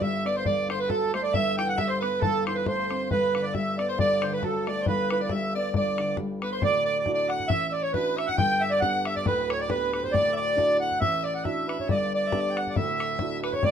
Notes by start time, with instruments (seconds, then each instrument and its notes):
Already playing: grand piano G1 G2
0.01 grand piano G3, soprano saxophone E5, accordion E5, bodhran
0.25 grand piano B3, accordion D5, soprano saxophone D5, bodhran
0.36 accordion C5, soprano saxophone C5
0.45 grand piano G1 G2, accordion D5, soprano saxophone D5, bodhran
0.69 grand piano D3, accordion C5, soprano saxophone C5, bodhran
0.80 soprano saxophone B4, accordion B4
0.89 grand piano F#3, accordion A4, soprano saxophone A4, bodhran
1.13 grand piano A3, accordion C5, soprano saxophone C5, bodhran
1.23 soprano saxophone C5 D5, accordion D5
1.33 grand piano G1 G2, accordion E5, soprano saxophone E5, bodhran
1.57 grand piano E3, soprano saxophone G5, accordion G5, bodhran
1.67 soprano saxophone F#5, accordion F#5
1.77 grand piano G3, soprano saxophone E5, accordion E5, bodhran
1.88 soprano saxophone C5, accordion C5
2.01 grand piano B3, soprano saxophone B4, accordion B4, bodhran
2.20 grand piano G1 G2, soprano saxophone A4, accordion A4, bodhran
2.46 grand piano E3, soprano saxophone C5, accordion C5, bodhran
2.55 soprano saxophone B4, accordion B4
2.66 grand piano A3, soprano saxophone C5, accordion C5, bodhran
2.91 grand piano C4, bodhran
3.11 grand piano G1 G2, soprano saxophone B4, accordion B4, bodhran
3.35 grand piano D3, accordion B4, soprano saxophone B4, bodhran
3.43 accordion D5, soprano saxophone D5
3.54 grand piano G3, soprano saxophone E5, accordion E5, bodhran
3.78 grand piano B3, accordion D5, soprano saxophone D5, bodhran
3.89 accordion C5, soprano saxophone C5
3.98 grand piano G1 G2, accordion D5, soprano saxophone D5, bodhran
4.22 grand piano D3, accordion C5, bodhran
4.33 accordion B4, soprano saxophone B4
4.43 grand piano F#3, accordion A4, soprano saxophone A4, bodhran
4.67 grand piano A3, accordion D5, soprano saxophone D5, bodhran
4.81 soprano saxophone C5
4.86 grand piano G1 G2, accordion B4, soprano saxophone B4, bodhran
5.10 grand piano E3, accordion B4, bodhran
5.21 soprano saxophone D5, accordion D5
5.29 grand piano G3, soprano saxophone E5, bodhran
5.33 accordion E5
5.55 grand piano B3, soprano saxophone D5, accordion D5
5.74 grand piano G1 G2, soprano saxophone D5, accordion D5, bodhran
5.98 grand piano D3, bodhran
6.17 grand piano G3, bodhran
6.42 grand piano B3, soprano saxophone B4, accordion B4, bodhran
6.52 soprano saxophone C5, accordion C5
6.62 grand piano D1 D2, soprano saxophone D5, accordion D5, bodhran
6.85 accordion D5, soprano saxophone D5
6.99 accordion D5
7.06 grand piano D4 E4 F#4, bodhran
7.13 accordion D5, soprano saxophone D5
7.28 soprano saxophone F#5, accordion F#5, bodhran
7.40 bodhran
7.48 grand piano A1, soprano saxophone E5, accordion E5, bodhran
7.68 accordion D5 E5
7.73 soprano saxophone D5
7.82 accordion C#5, soprano saxophone C#5
7.92 grand piano D4 E4 F#4, accordion B4, soprano saxophone B4, bodhran
8.17 soprano saxophone E5, accordion E5, bodhran
8.26 accordion F#5, soprano saxophone F#5, bodhran
8.37 grand piano G1 G2, accordion G5, soprano saxophone G5, bodhran
8.59 accordion E5, soprano saxophone E5 F#5
8.71 accordion D5, soprano saxophone D5
8.80 grand piano B3 D4 G4, accordion F#5, soprano saxophone F#5, bodhran
9.05 accordion E5, soprano saxophone E5, bodhran
9.16 soprano saxophone D5, accordion D5, bodhran
9.26 grand piano D1 D2, accordion B4, soprano saxophone B4, bodhran
9.50 soprano saxophone C#5, accordion C#5, bodhran
9.59 soprano saxophone D5, accordion D5
9.69 grand piano B3 D4 G4, accordion B4, soprano saxophone B4, bodhran
9.93 accordion B4, bodhran
10.03 accordion C5, soprano saxophone C5, bodhran
10.12 grand piano D1 D2, accordion D5, soprano saxophone D5, bodhran
10.33 accordion D5, soprano saxophone E5
10.40 soprano saxophone D5
10.56 grand piano D4 E4 F#4, bodhran
10.80 accordion F#5, soprano saxophone F#5
10.92 bodhran
11.00 grand piano A1, accordion E5, soprano saxophone E5, bodhran
11.24 soprano saxophone D5, accordion D5
11.34 accordion F#5
11.44 grand piano D4 E4 F#4, soprano saxophone E5, accordion E5, bodhran
11.68 accordion B4, bodhran
11.79 accordion C#5, bodhran
11.88 grand piano G1 G2, soprano saxophone D5, accordion D5, bodhran
12.14 soprano saxophone D5, accordion D5
12.27 soprano saxophone E5
12.32 grand piano B3 D4 G4, bodhran
12.41 soprano saxophone D5
12.50 soprano saxophone G5
12.56 soprano saxophone F#5, accordion F#5, bodhran
12.67 accordion D5, bodhran
12.76 grand piano D1 D2, soprano saxophone E5, accordion E5, bodhran
13.00 bodhran
13.19 grand piano D4 E4 F#4, bodhran
13.43 soprano saxophone B4, accordion B4, bodhran
13.53 soprano saxophone C#5, accordion C#5, bodhran
13.63 grand piano D1 D2, soprano saxophone D5, accordion D5, bodhran